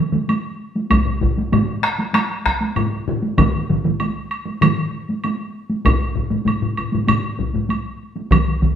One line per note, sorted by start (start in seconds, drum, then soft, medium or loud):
0.12 taiko mid medium
0.12 taiko high medium
0.29 taiko high medium
0.29 high woodblock soft
0.75 taiko high medium
0.90 taiko medium
0.90 taiko low-mid medium
0.90 taiko high medium
0.90 high woodblock medium
1.07 taiko low-mid medium
1.21 taiko medium
1.21 taiko low-mid medium
1.37 taiko high medium
1.52 taiko low-mid loud
1.52 taiko high medium
1.52 high woodblock soft
1.83 taiko rim medium
1.83 high woodblock soft
1.99 taiko high medium
2.13 taiko rim medium
2.13 taiko high medium
2.13 high woodblock medium
2.46 taiko rim medium
2.46 taiko medium
2.60 taiko high soft
2.76 taiko low-mid medium
2.76 taiko high medium
2.76 high woodblock soft
3.08 taiko low-mid medium
3.23 taiko high medium
3.38 taiko loud
3.38 taiko low-mid medium
3.38 taiko mid medium
3.38 taiko high medium
3.38 high woodblock medium
3.53 taiko high soft
3.70 taiko medium
3.70 taiko low-mid medium
3.70 taiko mid medium
3.84 taiko low-mid medium
3.84 taiko mid medium
3.84 taiko high medium
4.00 taiko high medium
4.00 high woodblock soft
4.31 high woodblock soft
4.46 taiko high medium
4.61 taiko low-mid medium
4.61 taiko mid medium
4.61 taiko high medium
4.61 high woodblock medium
5.09 taiko high medium
5.24 taiko high medium
5.24 high woodblock soft
5.70 taiko high medium
5.85 taiko medium
5.85 taiko low-mid medium
5.85 taiko high medium
5.85 high woodblock medium
6.16 taiko medium
6.16 taiko low-mid medium
6.31 taiko low-mid medium
6.31 taiko high medium
6.45 taiko low-mid medium
6.45 taiko high medium
6.45 high woodblock soft
6.62 taiko low-mid medium
6.77 taiko low-mid medium
6.77 high woodblock soft
6.92 taiko low-mid medium
6.92 taiko high soft
7.08 taiko low-mid medium
7.08 taiko high medium
7.08 high woodblock medium
7.39 taiko medium
7.39 taiko low-mid medium
7.54 taiko low-mid medium
7.54 taiko high soft
7.69 taiko high medium
7.69 high woodblock soft
8.16 taiko high medium
8.31 taiko medium
8.31 taiko mid medium
8.31 taiko high medium
8.31 high woodblock soft
8.62 taiko medium
8.62 taiko mid medium